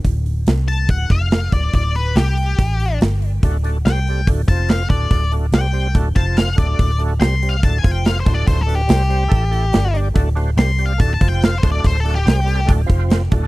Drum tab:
HH |oooooooo|oooooooo|oooooooo|oooooooo|
SD |--o---o-|--o---o-|--o---o-|--o---o-|
BD |o---oo-o|o---o---|o---oo-o|o---oo-o|

HH |oooooooo|oooooooo|oooooooo|oooooooo|
SD |--o---o-|--o---o-|--o---o-|--o---o-|
BD |o---oo-o|o---o---|o---oo-o|o---oo-o|